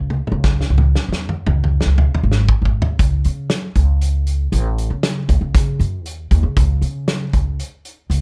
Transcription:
Already playing: upright bass C#2
0.10 high tom
0.27 mid tom
0.32 upright bass C#2
0.44 kick, snare
0.61 snare
0.70 upright bass C#2
0.78 mid tom
0.95 snare
1.09 upright bass E2, snare
1.29 mid tom
1.47 upright bass C#2, mid tom
1.64 mid tom
1.81 snare
1.85 upright bass C#2
1.98 floor tom
2.15 floor tom
2.23 upright bass G#1
2.32 snare
2.49 kick
2.62 upright bass G#1, kick
2.82 floor tom
2.99 upright bass C#2, kick, closed hi-hat
3.24 upright bass C#3, closed hi-hat
3.50 snare, closed hi-hat
3.75 upright bass C#2, kick, closed hi-hat
4.01 closed hi-hat
4.27 closed hi-hat
4.52 upright bass A1, closed hi-hat
4.78 closed hi-hat
4.90 upright bass C#3
5.03 snare, closed hi-hat
5.29 upright bass C#2, kick, closed hi-hat
5.41 upright bass C#2
5.55 upright bass C#3, kick, snare, closed hi-hat
5.79 upright bass F#2, closed hi-hat
6.05 upright bass D#2, closed hi-hat
6.31 upright bass D#2, kick, closed hi-hat
6.43 upright bass C#3
6.57 upright bass C#2, kick, closed hi-hat
6.81 upright bass C#3, closed hi-hat
7.08 snare, closed hi-hat
7.33 upright bass C#2, kick, closed hi-hat
7.59 closed hi-hat
7.85 closed hi-hat
8.10 upright bass C#2, closed hi-hat

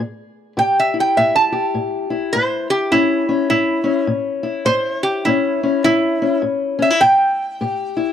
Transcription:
0.00 steel-string acoustic guitar A2
0.57 steel-string acoustic guitar A2 G4, resonator guitar played with a steel bar G5
0.80 resonator guitar played with a steel bar E5
0.94 steel-string acoustic guitar E4
1.00 resonator guitar played with a steel bar G5
1.17 steel-string acoustic guitar A2, resonator guitar played with a steel bar E5
1.36 resonator guitar played with a steel bar A5
1.52 steel-string acoustic guitar G4
1.74 steel-string acoustic guitar A2
2.10 steel-string acoustic guitar E4
2.33 steel-string acoustic guitar A2, resonator guitar played with a steel bar C5
2.70 resonator guitar played with a steel bar G4
2.91 steel-string acoustic guitar A2 C#4, resonator guitar played with a steel bar E4
3.29 steel-string acoustic guitar C#4
3.50 steel-string acoustic guitar A2, resonator guitar played with a steel bar E4
3.84 steel-string acoustic guitar C#4
4.07 steel-string acoustic guitar A2
4.43 steel-string acoustic guitar E4
4.65 steel-string acoustic guitar A2, resonator guitar played with a steel bar C5
5.03 resonator guitar played with a steel bar G4
5.25 steel-string acoustic guitar A2 C#4, resonator guitar played with a steel bar E4
5.63 steel-string acoustic guitar C#4
5.84 steel-string acoustic guitar A2, resonator guitar played with a steel bar E4
6.22 steel-string acoustic guitar C#4
6.42 steel-string acoustic guitar A2
6.79 steel-string acoustic guitar C#4, resonator guitar played with a steel bar E5
6.90 steel-string acoustic guitar E4
7.01 steel-string acoustic guitar A2, resonator guitar played with a steel bar G5
7.61 steel-string acoustic guitar A2 G4
7.97 steel-string acoustic guitar E4

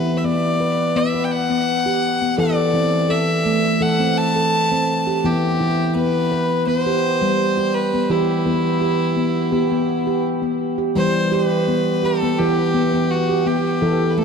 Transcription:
Already playing: handpan E3 E4, violin B4
0.17 violin E5
0.24 handpan B3, violin D5
0.60 handpan B4
0.96 handpan B3, violin E5
1.14 handpan B4
1.25 violin G5
1.31 violin F#5
1.50 handpan B3
1.86 handpan G4
2.22 handpan B3
2.38 handpan E3 A4, violin D5
2.73 handpan E3 C4
3.09 handpan A4, violin E5
3.45 handpan A3
3.81 handpan E3 A4, violin F#5
4.00 handpan C4
4.18 violin A5
4.36 handpan A4
4.72 handpan C4
5.07 handpan G4
5.24 handpan E3 B3, violin G4
5.60 handpan E3 E4
5.94 handpan B3, violin B4
6.32 handpan B4
6.67 handpan B3, violin C5
6.86 handpan G4
7.22 handpan G3
7.57 handpan G4
7.74 violin B4
7.94 handpan B3
8.10 handpan E3 G4, violin E4
8.46 handpan E3 B3
8.81 handpan G4
9.17 handpan B3
9.52 handpan B3 G4
9.72 handpan B3
10.07 handpan G4
10.42 handpan B3
10.78 handpan G4
10.95 handpan E3 G3, violin C5
11.32 handpan G4, violin B4
11.68 handpan B3
12.03 handpan G4, violin A4
12.23 handpan B3
12.38 handpan E3 G4, violin G4
12.74 handpan B3
12.93 handpan B3
13.11 violin F#4
13.29 handpan G4
13.46 handpan B3, violin G4
13.82 handpan E3 A4
14.11 violin B4
14.18 handpan A3, violin A4

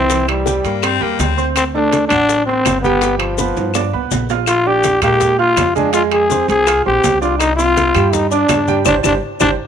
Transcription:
Already playing: upright bass C2, trombone C4
0.10 upright piano E3 E4 E5, high bongo, high conga, high timbale, maracas
0.28 trombone G3, high bongo, high conga, high timbale, claves
0.46 upright piano G3 G4 G5, high bongo, high conga, low timbale, maracas
0.64 upright bass G2, baritone saxophone A#3, high bongo, high conga, high timbale, maracas
0.82 upright piano C4 C5 C6, baritone saxophone C4, high bongo, high conga, high timbale, claves, maracas
1.00 upright bass E2, upright piano G3 G4 G5, baritone saxophone A#3, high conga
1.19 upright bass D2, baritone saxophone C4, high bongo, low bongo, high conga, high timbale, low timbale, maracas
1.37 upright piano C4 C5 C6, high bongo, high conga, maracas
1.56 trombone C4, high bongo, high conga, high timbale, claves, maracas
1.75 upright piano A3 A4 A5, trombone D4, high bongo, high conga
1.92 high bongo, high conga, high timbale, low timbale, maracas
2.08 upright bass A1, upright piano F#3 F#4 F#5, trombone D4, high bongo, high conga, low conga, high timbale, claves, maracas
2.29 high bongo, high conga, maracas
2.46 trombone C4, upright piano C4 C5 C6, high conga
2.65 upright bass G1, high bongo, low bongo, high conga, high timbale, low timbale, claves, maracas
2.82 upright piano G3 G4 G5, trombone B3, high bongo, high conga, maracas
3.01 upright piano G3 G4 G5, high bongo, high timbale, maracas
3.18 trombone F3, high bongo, high conga, high timbale, claves
3.38 upright piano B3 B4 B5, high bongo, high conga, low timbale, maracas
3.57 upright bass G2, high bongo, high conga, high timbale, maracas
3.74 upright piano D4 D5 D6, high bongo, high conga, low timbale, claves, maracas
3.93 upright bass C2, upright piano B3 B4 B5, high conga
4.11 upright bass A#1, high bongo, low bongo, high conga, low timbale, maracas
4.29 upright piano F4 F5 F6, high bongo, high conga, low timbale, maracas
4.46 trombone F4, high bongo, high conga, high timbale, claves, maracas
4.66 upright piano D4 D5 D6, trombone G4, high bongo, high conga
4.84 high bongo, high conga, high timbale, low timbale, maracas
5.02 upright bass A#2, upright piano G#3 A#4 F5, trombone G4, high bongo, high conga, low conga, high timbale, claves, maracas
5.21 high bongo, high conga, low conga, maracas
5.38 upright piano F4 F5 F6, trombone F4, high conga
5.57 upright bass F2, high bongo, low bongo, high conga, high timbale, low timbale, claves, maracas
5.75 upright piano G#3 G#4 G#5, trombone D4, high bongo, high conga, maracas
5.93 upright piano G#3 G#4 G#5, trombone F4, high bongo, high conga, high timbale, maracas
6.12 trombone G#4, high bongo, high conga, high timbale, claves
6.30 upright piano C4 C5 C6, high bongo, high conga, low timbale, maracas
6.48 upright bass C2, trombone G#4, high bongo, high conga, high timbale, maracas
6.67 upright piano F4 F5 F6, high bongo, high conga, high timbale, claves, maracas
6.86 upright bass A#1, upright piano C4 C5 C6, trombone G4, high conga
7.04 upright bass C2, high bongo, low bongo, high conga, high timbale, low timbale, maracas
7.21 upright piano D4 D5 D6, trombone F4, high bongo, maracas
7.39 trombone D#4, high bongo, high conga, high timbale, claves, maracas
7.56 upright piano C4 C5 C6, trombone F4, high bongo, high conga, maracas
7.77 high bongo, high conga, high timbale, low timbale, maracas
7.94 upright bass G2, upright piano G3 G4 G5, high bongo, high conga, low conga, high timbale, claves, maracas
8.13 trombone D#4, high bongo, high conga, low conga, maracas
8.31 trombone D4, upright piano D4 D5 D6, high conga, maracas
8.49 upright bass G2, high bongo, low bongo, high conga, high timbale, low timbale, claves, maracas
8.68 upright piano G3 G4 G5, high bongo, high conga, maracas
8.85 upright bass G1, trombone D4, upright piano G4 C5 D5, low bongo, high conga, high timbale, claves, maracas
9.03 upright bass G1, trombone D4, upright piano G4 C5 D5, low bongo, high conga, high timbale, claves, maracas
9.40 upright bass G1, trombone D4, upright piano G4 C5 D5, low bongo, high conga, high timbale, claves, maracas

